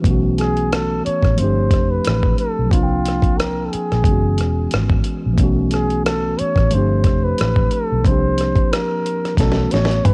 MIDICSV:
0, 0, Header, 1, 6, 480
1, 0, Start_track
1, 0, Tempo, 666667
1, 31, Time_signature, 4, 2, 24, 8
1, 7300, End_track
2, 0, Start_track
2, 0, Title_t, "Flugelhorn"
2, 0, Program_c, 0, 56
2, 284, Note_on_c, 0, 68, 92
2, 524, Note_on_c, 0, 69, 79
2, 535, Note_off_c, 0, 68, 0
2, 757, Note_off_c, 0, 69, 0
2, 762, Note_on_c, 0, 73, 87
2, 1005, Note_on_c, 0, 72, 82
2, 1016, Note_off_c, 0, 73, 0
2, 1373, Note_on_c, 0, 71, 87
2, 1384, Note_off_c, 0, 72, 0
2, 1716, Note_off_c, 0, 71, 0
2, 1720, Note_on_c, 0, 69, 82
2, 1954, Note_on_c, 0, 65, 83
2, 1965, Note_off_c, 0, 69, 0
2, 2437, Note_on_c, 0, 70, 84
2, 2448, Note_off_c, 0, 65, 0
2, 2630, Note_on_c, 0, 69, 55
2, 2641, Note_off_c, 0, 70, 0
2, 2675, Note_on_c, 0, 68, 77
2, 2686, Note_off_c, 0, 69, 0
2, 3393, Note_off_c, 0, 68, 0
2, 4122, Note_on_c, 0, 68, 85
2, 4340, Note_off_c, 0, 68, 0
2, 4361, Note_on_c, 0, 69, 91
2, 4606, Note_on_c, 0, 73, 91
2, 4617, Note_off_c, 0, 69, 0
2, 4850, Note_on_c, 0, 72, 86
2, 4861, Note_off_c, 0, 73, 0
2, 5215, Note_on_c, 0, 71, 94
2, 5226, Note_off_c, 0, 72, 0
2, 5567, Note_on_c, 0, 69, 80
2, 5578, Note_off_c, 0, 71, 0
2, 5799, Note_off_c, 0, 69, 0
2, 5808, Note_on_c, 0, 72, 87
2, 6280, Note_on_c, 0, 70, 90
2, 6290, Note_off_c, 0, 72, 0
2, 6755, Note_off_c, 0, 70, 0
2, 6760, Note_on_c, 0, 69, 75
2, 7000, Note_on_c, 0, 73, 83
2, 7011, Note_off_c, 0, 69, 0
2, 7239, Note_on_c, 0, 71, 84
2, 7250, Note_off_c, 0, 73, 0
2, 7300, Note_off_c, 0, 71, 0
2, 7300, End_track
3, 0, Start_track
3, 0, Title_t, "Tine electric piano"
3, 0, Program_c, 1, 4
3, 0, Control_c, 1, 64, 127
3, 10, Note_on_c, 1, 52, 68
3, 24, Note_on_c, 1, 57, 57
3, 39, Control_c, 1, 64, 0
3, 40, Note_on_c, 1, 59, 59
3, 60, Note_on_c, 1, 61, 63
3, 77, Note_on_c, 1, 66, 74
3, 187, Control_c, 1, 64, 127
3, 961, Note_off_c, 1, 52, 0
3, 964, Note_on_c, 1, 53, 61
3, 968, Note_off_c, 1, 57, 0
3, 976, Note_off_c, 1, 59, 0
3, 981, Note_on_c, 1, 57, 57
3, 987, Note_off_c, 1, 61, 0
3, 995, Note_off_c, 1, 66, 0
3, 999, Control_c, 1, 64, 0
3, 1001, Note_on_c, 1, 60, 56
3, 1020, Note_on_c, 1, 62, 57
3, 1034, Note_on_c, 1, 67, 67
3, 1123, Control_c, 1, 64, 127
3, 1910, Note_off_c, 1, 53, 0
3, 1919, Note_on_c, 1, 53, 55
3, 1927, Note_off_c, 1, 57, 0
3, 1937, Note_off_c, 1, 60, 0
3, 1939, Note_on_c, 1, 58, 55
3, 1947, Note_off_c, 1, 62, 0
3, 1954, Note_off_c, 1, 67, 0
3, 1955, Note_on_c, 1, 60, 53
3, 1959, Control_c, 1, 64, 0
3, 1973, Note_on_c, 1, 62, 50
3, 1990, Note_on_c, 1, 65, 52
3, 2022, Note_off_c, 1, 65, 0
3, 2039, Note_on_c, 1, 79, 67
3, 2079, Control_c, 1, 64, 127
3, 2875, Note_off_c, 1, 53, 0
3, 2886, Note_off_c, 1, 58, 0
3, 2890, Note_on_c, 1, 52, 61
3, 2893, Note_off_c, 1, 60, 0
3, 2903, Note_off_c, 1, 62, 0
3, 2904, Note_on_c, 1, 56, 56
3, 2919, Control_c, 1, 64, 0
3, 2922, Note_on_c, 1, 59, 53
3, 2936, Note_off_c, 1, 79, 0
3, 2940, Note_on_c, 1, 61, 53
3, 2959, Note_on_c, 1, 66, 67
3, 3061, Control_c, 1, 64, 127
3, 3829, Note_off_c, 1, 52, 0
3, 3838, Note_on_c, 1, 52, 68
3, 3848, Note_off_c, 1, 56, 0
3, 3854, Note_on_c, 1, 57, 58
3, 3857, Note_off_c, 1, 59, 0
3, 3866, Note_off_c, 1, 61, 0
3, 3873, Note_on_c, 1, 59, 65
3, 3876, Note_off_c, 1, 66, 0
3, 3880, Control_c, 1, 64, 0
3, 3891, Note_on_c, 1, 61, 64
3, 3913, Note_on_c, 1, 66, 75
3, 4011, Control_c, 1, 64, 127
3, 4795, Note_off_c, 1, 52, 0
3, 4803, Note_off_c, 1, 57, 0
3, 4808, Note_on_c, 1, 53, 57
3, 4813, Note_off_c, 1, 59, 0
3, 4822, Note_off_c, 1, 61, 0
3, 4825, Note_on_c, 1, 57, 58
3, 4833, Note_off_c, 1, 66, 0
3, 4838, Control_c, 1, 64, 0
3, 4843, Note_on_c, 1, 60, 54
3, 4861, Note_on_c, 1, 62, 56
3, 4879, Note_on_c, 1, 67, 67
3, 4958, Control_c, 1, 64, 127
3, 5760, Note_off_c, 1, 53, 0
3, 5768, Note_off_c, 1, 57, 0
3, 5772, Note_on_c, 1, 53, 60
3, 5778, Note_off_c, 1, 60, 0
3, 5787, Note_off_c, 1, 62, 0
3, 5790, Note_on_c, 1, 58, 49
3, 5796, Note_off_c, 1, 67, 0
3, 5800, Control_c, 1, 64, 0
3, 5808, Note_on_c, 1, 60, 57
3, 5825, Note_on_c, 1, 62, 57
3, 5843, Note_on_c, 1, 67, 67
3, 5904, Control_c, 1, 64, 127
3, 6722, Note_off_c, 1, 53, 0
3, 6727, Note_on_c, 1, 52, 58
3, 6731, Note_off_c, 1, 58, 0
3, 6740, Note_off_c, 1, 60, 0
3, 6743, Note_on_c, 1, 57, 57
3, 6749, Note_off_c, 1, 62, 0
3, 6758, Note_off_c, 1, 67, 0
3, 6761, Control_c, 1, 64, 0
3, 6763, Note_on_c, 1, 59, 53
3, 6777, Note_on_c, 1, 61, 55
3, 6797, Note_on_c, 1, 66, 69
3, 6866, Control_c, 1, 64, 127
3, 7300, Note_off_c, 1, 52, 0
3, 7300, Note_off_c, 1, 57, 0
3, 7300, Note_off_c, 1, 59, 0
3, 7300, Note_off_c, 1, 61, 0
3, 7300, Note_off_c, 1, 66, 0
3, 7300, End_track
4, 0, Start_track
4, 0, Title_t, "Fingered electric bass"
4, 0, Program_c, 2, 33
4, 40, Note_on_c, 2, 35, 80
4, 726, Note_off_c, 2, 35, 0
4, 891, Note_on_c, 2, 33, 75
4, 976, Note_off_c, 2, 33, 0
4, 1004, Note_on_c, 2, 31, 85
4, 1240, Note_off_c, 2, 31, 0
4, 1240, Note_on_c, 2, 29, 85
4, 1432, Note_off_c, 2, 29, 0
4, 1492, Note_on_c, 2, 33, 77
4, 1679, Note_off_c, 2, 33, 0
4, 1863, Note_on_c, 2, 35, 61
4, 1963, Note_off_c, 2, 35, 0
4, 1963, Note_on_c, 2, 36, 87
4, 2648, Note_off_c, 2, 36, 0
4, 2823, Note_on_c, 2, 34, 73
4, 2903, Note_off_c, 2, 34, 0
4, 2918, Note_on_c, 2, 30, 93
4, 3169, Note_off_c, 2, 30, 0
4, 3169, Note_on_c, 2, 28, 87
4, 3357, Note_off_c, 2, 28, 0
4, 3409, Note_on_c, 2, 32, 78
4, 3598, Note_off_c, 2, 32, 0
4, 3787, Note_on_c, 2, 34, 76
4, 3878, Note_off_c, 2, 34, 0
4, 3878, Note_on_c, 2, 35, 86
4, 4566, Note_off_c, 2, 35, 0
4, 4731, Note_on_c, 2, 33, 68
4, 4816, Note_off_c, 2, 33, 0
4, 4853, Note_on_c, 2, 31, 88
4, 5080, Note_off_c, 2, 31, 0
4, 5080, Note_on_c, 2, 29, 91
4, 5272, Note_off_c, 2, 29, 0
4, 5334, Note_on_c, 2, 33, 73
4, 5520, Note_off_c, 2, 33, 0
4, 5703, Note_on_c, 2, 35, 69
4, 5800, Note_off_c, 2, 35, 0
4, 5800, Note_on_c, 2, 36, 90
4, 6188, Note_off_c, 2, 36, 0
4, 6758, Note_on_c, 2, 35, 84
4, 6951, Note_off_c, 2, 35, 0
4, 7009, Note_on_c, 2, 33, 76
4, 7197, Note_off_c, 2, 33, 0
4, 7250, Note_on_c, 2, 32, 76
4, 7300, Note_off_c, 2, 32, 0
4, 7300, End_track
5, 0, Start_track
5, 0, Title_t, "Muted fingered electric bass strokes"
5, 770, Note_on_c, 9, 29, 40
5, 842, Note_off_c, 9, 29, 0
5, 2694, Note_on_c, 9, 29, 38
5, 2766, Note_off_c, 9, 29, 0
5, 4614, Note_on_c, 9, 29, 40
5, 4686, Note_off_c, 9, 29, 0
5, 7300, End_track
6, 0, Start_track
6, 0, Title_t, "Drums"
6, 31, Note_on_c, 9, 36, 95
6, 38, Note_on_c, 9, 42, 77
6, 103, Note_off_c, 9, 36, 0
6, 110, Note_off_c, 9, 42, 0
6, 276, Note_on_c, 9, 42, 62
6, 297, Note_on_c, 9, 37, 31
6, 348, Note_off_c, 9, 42, 0
6, 369, Note_off_c, 9, 37, 0
6, 409, Note_on_c, 9, 42, 33
6, 481, Note_off_c, 9, 42, 0
6, 522, Note_on_c, 9, 42, 65
6, 525, Note_on_c, 9, 37, 102
6, 594, Note_off_c, 9, 42, 0
6, 597, Note_off_c, 9, 37, 0
6, 764, Note_on_c, 9, 42, 51
6, 836, Note_off_c, 9, 42, 0
6, 883, Note_on_c, 9, 36, 86
6, 897, Note_on_c, 9, 37, 30
6, 897, Note_on_c, 9, 42, 30
6, 955, Note_off_c, 9, 36, 0
6, 969, Note_off_c, 9, 37, 0
6, 969, Note_off_c, 9, 42, 0
6, 993, Note_on_c, 9, 42, 87
6, 1065, Note_off_c, 9, 42, 0
6, 1230, Note_on_c, 9, 36, 76
6, 1231, Note_on_c, 9, 42, 62
6, 1250, Note_on_c, 9, 37, 27
6, 1302, Note_off_c, 9, 36, 0
6, 1303, Note_off_c, 9, 42, 0
6, 1322, Note_off_c, 9, 37, 0
6, 1473, Note_on_c, 9, 42, 74
6, 1493, Note_on_c, 9, 37, 96
6, 1545, Note_off_c, 9, 42, 0
6, 1565, Note_off_c, 9, 37, 0
6, 1606, Note_on_c, 9, 36, 83
6, 1678, Note_off_c, 9, 36, 0
6, 1715, Note_on_c, 9, 42, 54
6, 1787, Note_off_c, 9, 42, 0
6, 1953, Note_on_c, 9, 36, 97
6, 1964, Note_on_c, 9, 42, 79
6, 2025, Note_off_c, 9, 36, 0
6, 2036, Note_off_c, 9, 42, 0
6, 2200, Note_on_c, 9, 42, 65
6, 2221, Note_on_c, 9, 37, 30
6, 2272, Note_off_c, 9, 42, 0
6, 2293, Note_off_c, 9, 37, 0
6, 2320, Note_on_c, 9, 36, 89
6, 2330, Note_on_c, 9, 42, 31
6, 2392, Note_off_c, 9, 36, 0
6, 2402, Note_off_c, 9, 42, 0
6, 2445, Note_on_c, 9, 42, 74
6, 2448, Note_on_c, 9, 37, 92
6, 2517, Note_off_c, 9, 42, 0
6, 2520, Note_off_c, 9, 37, 0
6, 2685, Note_on_c, 9, 42, 57
6, 2757, Note_off_c, 9, 42, 0
6, 2820, Note_on_c, 9, 37, 31
6, 2820, Note_on_c, 9, 42, 29
6, 2892, Note_off_c, 9, 37, 0
6, 2892, Note_off_c, 9, 42, 0
6, 2908, Note_on_c, 9, 36, 84
6, 2916, Note_on_c, 9, 42, 77
6, 2980, Note_off_c, 9, 36, 0
6, 2988, Note_off_c, 9, 42, 0
6, 3152, Note_on_c, 9, 42, 64
6, 3172, Note_on_c, 9, 37, 26
6, 3224, Note_off_c, 9, 42, 0
6, 3244, Note_off_c, 9, 37, 0
6, 3390, Note_on_c, 9, 42, 73
6, 3411, Note_on_c, 9, 37, 88
6, 3462, Note_off_c, 9, 42, 0
6, 3483, Note_off_c, 9, 37, 0
6, 3524, Note_on_c, 9, 36, 84
6, 3596, Note_off_c, 9, 36, 0
6, 3628, Note_on_c, 9, 42, 60
6, 3700, Note_off_c, 9, 42, 0
6, 3870, Note_on_c, 9, 36, 85
6, 3874, Note_on_c, 9, 42, 75
6, 3942, Note_off_c, 9, 36, 0
6, 3946, Note_off_c, 9, 42, 0
6, 4109, Note_on_c, 9, 42, 63
6, 4130, Note_on_c, 9, 37, 29
6, 4181, Note_off_c, 9, 42, 0
6, 4202, Note_off_c, 9, 37, 0
6, 4250, Note_on_c, 9, 42, 33
6, 4322, Note_off_c, 9, 42, 0
6, 4363, Note_on_c, 9, 42, 74
6, 4366, Note_on_c, 9, 37, 100
6, 4435, Note_off_c, 9, 42, 0
6, 4438, Note_off_c, 9, 37, 0
6, 4599, Note_on_c, 9, 42, 57
6, 4671, Note_off_c, 9, 42, 0
6, 4722, Note_on_c, 9, 36, 90
6, 4735, Note_on_c, 9, 37, 29
6, 4735, Note_on_c, 9, 42, 28
6, 4794, Note_off_c, 9, 36, 0
6, 4807, Note_off_c, 9, 37, 0
6, 4807, Note_off_c, 9, 42, 0
6, 4830, Note_on_c, 9, 42, 75
6, 4902, Note_off_c, 9, 42, 0
6, 5069, Note_on_c, 9, 42, 57
6, 5071, Note_on_c, 9, 36, 75
6, 5088, Note_on_c, 9, 37, 25
6, 5141, Note_off_c, 9, 42, 0
6, 5143, Note_off_c, 9, 36, 0
6, 5160, Note_off_c, 9, 37, 0
6, 5315, Note_on_c, 9, 42, 76
6, 5336, Note_on_c, 9, 37, 88
6, 5387, Note_off_c, 9, 42, 0
6, 5408, Note_off_c, 9, 37, 0
6, 5444, Note_on_c, 9, 36, 78
6, 5516, Note_off_c, 9, 36, 0
6, 5551, Note_on_c, 9, 42, 52
6, 5623, Note_off_c, 9, 42, 0
6, 5793, Note_on_c, 9, 36, 95
6, 5799, Note_on_c, 9, 42, 75
6, 5865, Note_off_c, 9, 36, 0
6, 5871, Note_off_c, 9, 42, 0
6, 6033, Note_on_c, 9, 42, 65
6, 6054, Note_on_c, 9, 37, 30
6, 6105, Note_off_c, 9, 42, 0
6, 6126, Note_off_c, 9, 37, 0
6, 6160, Note_on_c, 9, 36, 91
6, 6166, Note_on_c, 9, 42, 35
6, 6232, Note_off_c, 9, 36, 0
6, 6238, Note_off_c, 9, 42, 0
6, 6285, Note_on_c, 9, 42, 77
6, 6287, Note_on_c, 9, 37, 107
6, 6357, Note_off_c, 9, 42, 0
6, 6359, Note_off_c, 9, 37, 0
6, 6522, Note_on_c, 9, 42, 55
6, 6594, Note_off_c, 9, 42, 0
6, 6661, Note_on_c, 9, 37, 33
6, 6661, Note_on_c, 9, 42, 34
6, 6733, Note_off_c, 9, 37, 0
6, 6733, Note_off_c, 9, 42, 0
6, 6748, Note_on_c, 9, 36, 78
6, 6754, Note_on_c, 9, 42, 79
6, 6770, Note_on_c, 9, 38, 48
6, 6820, Note_off_c, 9, 36, 0
6, 6826, Note_off_c, 9, 42, 0
6, 6842, Note_off_c, 9, 38, 0
6, 6852, Note_on_c, 9, 38, 46
6, 6924, Note_off_c, 9, 38, 0
6, 6992, Note_on_c, 9, 42, 56
6, 7012, Note_on_c, 9, 38, 47
6, 7064, Note_off_c, 9, 42, 0
6, 7084, Note_off_c, 9, 38, 0
6, 7092, Note_on_c, 9, 38, 57
6, 7136, Note_on_c, 9, 42, 29
6, 7164, Note_off_c, 9, 38, 0
6, 7208, Note_off_c, 9, 42, 0
6, 7236, Note_on_c, 9, 45, 71
6, 7237, Note_on_c, 9, 42, 70
6, 7300, Note_off_c, 9, 42, 0
6, 7300, Note_off_c, 9, 45, 0
6, 7300, End_track
0, 0, End_of_file